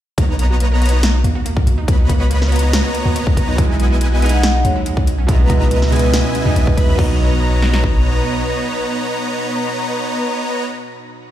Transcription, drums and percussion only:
0.18 kick loud
0.18 closed hi-hat medium
0.39 closed hi-hat medium
0.60 closed hi-hat medium
0.82 closed hi-hat soft
0.86 closed hi-hat medium
0.89 closed hi-hat medium
1.03 snare loud
1.03 closed hi-hat medium
1.24 closed hi-hat medium
1.46 closed hi-hat medium
1.57 kick loud
1.67 closed hi-hat medium
1.88 kick loud
1.88 closed hi-hat medium
2.09 kick medium
2.09 closed hi-hat medium
2.31 closed hi-hat medium
2.42 snare soft
2.52 closed hi-hat soft
2.56 closed hi-hat medium
2.59 closed hi-hat medium
2.73 snare loud
2.73 closed hi-hat medium
2.95 closed hi-hat medium
3.16 closed hi-hat medium
3.27 kick loud
3.37 kick medium
3.37 closed hi-hat medium
3.58 kick loud
3.58 closed hi-hat medium
3.80 closed hi-hat medium
4.01 closed hi-hat medium
4.22 closed hi-hat soft
4.26 closed hi-hat medium
4.29 closed hi-hat medium
4.43 snare loud
4.43 closed hi-hat medium
4.65 closed hi-hat medium
4.86 closed hi-hat medium
4.97 kick loud
5.07 closed hi-hat medium
5.28 kick loud
5.28 closed hi-hat medium
5.50 kick medium
5.50 closed hi-hat medium
5.71 closed hi-hat medium
5.82 snare soft
5.92 closed hi-hat soft
5.96 closed hi-hat medium
5.99 closed hi-hat medium
6.14 snare loud
6.14 closed hi-hat medium
6.35 closed hi-hat medium
6.56 closed hi-hat medium
6.67 kick loud
6.77 kick medium
6.77 closed hi-hat medium
6.99 kick loud
6.99 crash medium
7.62 snare medium
7.73 snare medium
7.84 kick medium

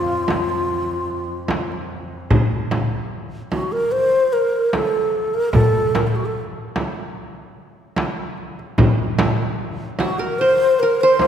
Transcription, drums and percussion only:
0.10 darbuka ka soft
0.28 darbuka tek medium
0.28 frame drum medium
0.70 darbuka ka soft
1.11 darbuka ka soft
1.48 darbuka tek medium
1.48 frame drum medium
1.72 darbuka ka soft
2.31 frame drum medium
2.31 darbuka dum medium
2.52 darbuka ka soft
2.71 darbuka tek medium
2.71 frame drum medium
3.32 darbuka ka soft
3.52 frame drum medium
4.73 darbuka tek medium
4.73 frame drum medium
5.15 darbuka ka soft
5.35 darbuka ka soft
5.53 frame drum medium
5.53 darbuka dum medium
5.75 darbuka ka soft
5.95 darbuka tek medium
5.95 frame drum medium
6.76 darbuka tek medium
6.76 frame drum medium
7.96 darbuka tek medium
7.96 frame drum medium
8.38 darbuka ka soft
8.59 darbuka ka soft
8.78 darbuka dum medium
8.78 frame drum medium
8.98 darbuka ka soft
9.19 darbuka tek medium
9.19 frame drum medium
9.99 darbuka tek medium
9.99 frame drum medium
11.19 darbuka tek medium
11.19 frame drum medium

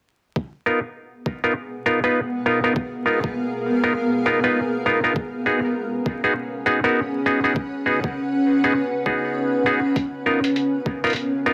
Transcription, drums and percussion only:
0.36 kick loud
1.26 kick medium
2.76 kick loud
3.24 kick medium
5.16 kick loud
6.06 kick loud
7.56 kick loud
8.04 kick medium
9.06 kick medium
9.96 kick loud
9.96 closed hi-hat soft
10.44 closed hi-hat medium
10.56 closed hi-hat soft
10.86 kick loud
11.04 closed hi-hat soft
11.07 closed hi-hat soft
11.10 closed hi-hat soft
11.13 closed hi-hat soft
11.16 closed hi-hat soft

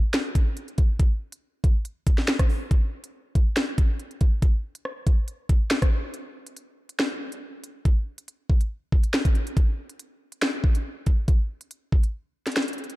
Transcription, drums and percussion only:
0.13 finger snap loud
0.13 snare loud
0.13 closed hi-hat medium
0.35 kick medium
0.35 closed hi-hat loud
0.57 closed hi-hat medium
0.68 closed hi-hat soft
0.78 kick medium
0.78 closed hi-hat medium
1.00 kick loud
1.00 closed hi-hat medium
1.32 closed hi-hat medium
1.64 kick medium
1.64 closed hi-hat medium
1.85 closed hi-hat medium
2.07 kick medium
2.07 closed hi-hat loud
2.18 snare medium
2.27 finger snap loud
2.27 snare loud
2.39 kick loud
2.39 cross-stick medium
2.39 closed hi-hat medium
2.49 open hi-hat medium
2.71 kick loud
2.71 closed hi-hat medium
3.04 closed hi-hat medium
3.35 kick medium
3.35 closed hi-hat medium
3.56 finger snap loud
3.56 snare loud
3.56 closed hi-hat medium
3.78 kick loud
3.78 closed hi-hat loud
3.99 closed hi-hat medium
4.11 closed hi-hat soft
4.21 kick medium
4.21 closed hi-hat medium
4.42 kick loud
4.42 closed hi-hat medium
4.75 closed hi-hat medium
4.85 cross-stick medium
5.07 kick medium
5.07 closed hi-hat medium
5.28 closed hi-hat medium
5.49 kick loud
5.49 closed hi-hat loud
5.70 finger snap loud
5.70 snare loud
5.82 kick loud
5.82 cross-stick medium
5.82 closed hi-hat medium
6.14 closed hi-hat medium
6.47 closed hi-hat medium
6.57 closed hi-hat medium
6.89 closed hi-hat medium
6.99 finger snap medium
6.99 snare loud
7.32 closed hi-hat medium
7.64 closed hi-hat medium
7.85 kick loud
7.85 closed hi-hat medium
8.18 closed hi-hat medium
8.28 closed hi-hat medium
8.50 kick medium
8.61 closed hi-hat medium
8.92 kick medium
9.04 closed hi-hat medium
9.13 finger snap loud
9.13 snare loud
9.25 kick loud
9.25 closed hi-hat medium
9.35 closed hi-hat medium
9.47 closed hi-hat medium
9.57 kick loud
9.57 closed hi-hat medium
9.89 closed hi-hat medium
9.99 closed hi-hat medium
10.32 closed hi-hat medium
10.42 finger snap loud
10.42 snare loud
10.64 kick medium
10.75 closed hi-hat medium
11.06 kick medium
11.06 closed hi-hat medium
11.28 kick loud
11.28 closed hi-hat medium
11.61 closed hi-hat medium
11.71 closed hi-hat medium
11.92 kick medium
12.03 closed hi-hat medium
12.47 snare medium
12.47 closed hi-hat medium
12.52 closed hi-hat medium
12.56 finger snap loud
12.56 snare loud
12.56 closed hi-hat medium
12.62 closed hi-hat medium
12.68 closed hi-hat medium
12.73 closed hi-hat medium
12.78 closed hi-hat medium
12.84 closed hi-hat soft
12.90 closed hi-hat medium

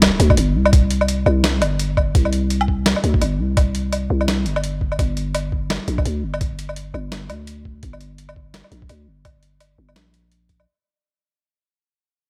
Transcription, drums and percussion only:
0.02 snare loud
0.02 closed hi-hat medium
0.02 low woodblock medium
0.20 closed hi-hat medium
0.30 kick loud
0.30 low woodblock medium
0.37 closed hi-hat medium
0.66 low woodblock medium
0.73 kick loud
0.73 closed hi-hat medium
0.91 closed hi-hat medium
1.01 low woodblock medium
1.08 closed hi-hat medium
1.26 low woodblock medium
1.44 snare loud
1.44 closed hi-hat medium
1.62 closed hi-hat medium
1.62 low woodblock medium
1.79 closed hi-hat medium
1.97 kick medium
1.97 low woodblock medium
2.15 kick loud
2.15 closed hi-hat medium
2.25 low woodblock soft
2.33 closed hi-hat medium
2.50 closed hi-hat medium
2.61 low woodblock medium
2.68 kick medium
2.86 snare loud
2.86 closed hi-hat medium
2.96 low woodblock soft
3.04 closed hi-hat medium
3.14 kick loud
3.22 closed hi-hat medium
3.22 low woodblock soft
3.57 kick loud
3.57 closed hi-hat medium
3.57 low woodblock medium
3.75 closed hi-hat medium
3.93 closed hi-hat medium
3.93 low woodblock soft
4.21 low woodblock soft
4.28 snare loud
4.28 closed hi-hat medium
4.46 closed hi-hat medium
4.56 low woodblock medium
4.64 closed hi-hat medium
4.81 kick medium
4.92 low woodblock soft
4.99 kick loud
4.99 closed hi-hat medium
4.99 low woodblock soft
5.17 closed hi-hat medium
5.35 closed hi-hat medium
5.35 low woodblock medium
5.52 kick medium
5.70 snare loud
5.70 closed hi-hat medium
5.70 low woodblock soft
5.88 closed hi-hat medium
5.98 kick loud
5.98 low woodblock soft
6.06 closed hi-hat medium
6.34 low woodblock medium
6.41 kick loud
6.41 closed hi-hat medium
6.59 closed hi-hat medium
6.69 low woodblock soft
6.76 closed hi-hat medium
6.94 low woodblock soft
7.12 snare loud
7.12 closed hi-hat medium
7.30 closed hi-hat medium
7.30 low woodblock medium
7.47 closed hi-hat medium
7.65 kick medium
7.83 kick loud
7.83 closed hi-hat medium
7.93 low woodblock soft
8.01 closed hi-hat medium
8.18 closed hi-hat medium
8.29 low woodblock medium
8.36 kick medium
8.54 snare loud
8.54 closed hi-hat medium
8.64 low woodblock soft
8.72 closed hi-hat medium
8.82 kick medium
8.89 closed hi-hat medium
8.89 low woodblock soft
9.25 kick loud
9.25 closed hi-hat medium
9.25 low woodblock medium
9.43 closed hi-hat medium
9.60 closed hi-hat medium
9.60 low woodblock soft
9.89 low woodblock soft
9.96 snare loud
9.96 closed hi-hat medium
10.14 closed hi-hat medium
10.32 closed hi-hat medium
10.49 kick medium
10.49 closed hi-hat soft
10.60 low woodblock soft

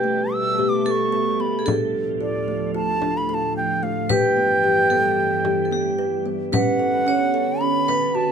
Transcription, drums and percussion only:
0.59 frame drum soft
1.13 frame drum soft
1.68 frame drum medium
3.02 frame drum medium
3.56 frame drum soft
4.10 frame drum medium
4.91 frame drum soft
5.45 frame drum medium
6.54 frame drum medium
7.89 frame drum medium
8.16 frame drum soft

